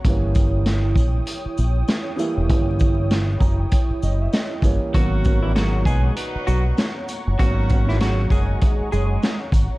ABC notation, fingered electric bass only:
X:1
M:4/4
L:1/16
Q:"Swing 16ths" 1/4=98
K:D#phr
V:1 name="Fingered electric bass" clef=bass
=G,,,6 A,,,2 z2 A,,,2 z3 E,,, | =G,,,6 F,,,2 z2 F,,,2 z2 G,,, z | G,,,6 B,,,2 z2 B,,,2 z3 F,,, | G,,,6 F,,,2 z2 F,,,2 z2 G,,, z |]